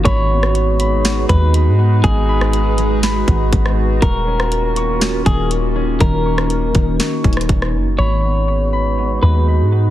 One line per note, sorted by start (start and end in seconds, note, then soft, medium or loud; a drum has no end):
0.00 0.10 D#3 medium
0.00 2.21 C#4 medium
0.00 7.95 F#4 medium
0.00 0.32 C#6 loud
0.05 1.25 G#1 loud
0.05 3.98 G#3 medium
0.05 3.98 D#4 medium
0.05 2.02 G#4 medium
0.05 3.98 B4 medium
0.05 1.25 C#5 loud
0.05 0.79 B5 loud
0.05 kick loud
0.05 closed hi-hat medium
0.30 1.04 B3 medium
0.43 cross-stick medium
0.55 closed hi-hat medium
0.79 1.54 B5 loud
0.79 closed hi-hat medium
1.05 1.78 B3 medium
1.05 snare loud
1.05 closed hi-hat medium
1.29 1.68 D#2 loud
1.29 2.02 G#3 medium
1.29 1.53 B4 medium
1.29 kick loud
1.29 closed hi-hat medium
1.54 2.28 B5 medium
1.54 closed hi-hat medium
1.67 2.02 G#2 loud
1.79 3.28 B3 medium
2.03 3.24 G#1 loud
2.03 2.78 G#3 medium
2.03 2.99 G#4 loud
2.03 4.00 G#4 medium
2.03 kick loud
2.03 closed hi-hat medium
2.29 3.03 B5 loud
2.41 cross-stick medium
2.53 closed hi-hat medium
2.78 4.07 G#3 medium
2.78 closed hi-hat medium
3.03 4.38 B5 loud
3.03 snare loud
3.03 closed hi-hat medium
3.28 3.52 G#1 loud
3.28 6.39 B3 medium
3.28 kick loud
3.28 closed hi-hat medium
3.53 4.00 G#1 loud
3.53 kick loud
3.53 closed hi-hat medium
3.66 cross-stick medium
4.02 5.22 D#1 loud
4.02 7.95 D#3 medium
4.02 7.95 A#3 medium
4.02 7.95 C#4 medium
4.02 5.99 F4 medium
4.02 5.22 A#4 loud
4.02 4.76 C#6 loud
4.02 kick loud
4.02 closed hi-hat medium
4.27 5.01 C#4 medium
4.40 cross-stick loud
4.52 closed hi-hat medium
4.76 5.51 C#6 loud
4.76 closed hi-hat medium
5.01 5.75 C#4 medium
5.01 snare loud
5.01 closed hi-hat medium
5.26 5.97 D#1 loud
5.26 5.99 D#3 medium
5.26 5.50 G#4 medium
5.26 kick medium
5.26 closed hi-hat medium
5.51 6.25 C#6 loud
5.51 closed hi-hat medium
5.76 7.24 C#4 medium
6.00 6.72 D#1 loud
6.00 6.73 D#3 medium
6.00 7.97 D#4 medium
6.00 6.96 A#4 loud
6.00 kick loud
6.00 closed hi-hat medium
6.25 6.99 C#6 medium
6.38 cross-stick loud
6.50 closed hi-hat medium
6.75 6.99 D#1 loud
6.75 8.04 D#3 medium
6.75 kick medium
6.75 closed hi-hat medium
6.99 8.26 C#6 loud
6.99 snare loud
6.99 closed hi-hat medium
7.24 7.48 D#1 loud
7.24 9.90 C#4 medium
7.24 kick medium
7.24 closed hi-hat soft
7.33 closed hi-hat medium
7.37 cross-stick medium
7.37 closed hi-hat medium
7.49 7.76 D#1 loud
7.49 kick loud
7.49 closed hi-hat medium
7.62 cross-stick medium
7.74 7.98 F#1 loud
7.99 9.19 G#1 loud
7.99 9.90 G#3 medium
7.99 9.90 D#4 medium
7.99 9.90 F#4 medium
7.99 9.90 G#4 medium
7.99 9.90 B4 medium
7.99 9.19 C#5 loud
7.99 8.72 B5 loud
8.24 8.98 B3 medium
8.73 9.48 B5 medium
8.98 9.72 B3 medium
9.23 9.61 D#2 loud
9.23 9.90 G#3 medium
9.23 9.46 B4 medium
9.48 9.90 B5 medium
9.60 9.90 G#2 loud
9.72 9.90 B3 medium